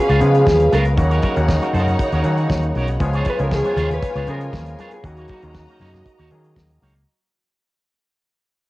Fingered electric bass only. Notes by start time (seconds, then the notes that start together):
0.09 C#2
0.21 C#3
0.47 D#2
0.73 C#2
0.97 D#2
1.37 D#2
1.74 F#2
2.13 D#2
2.25 D#3
2.50 D#2
2.76 B1
3.00 C#2
3.40 C#2
3.77 D#2
4.16 C#2
4.28 C#3
4.53 D#2
5.04 D#2
5.43 D#2
5.80 F#2
6.19 D#2
6.32 D#3
6.56 D#2
6.82 C#2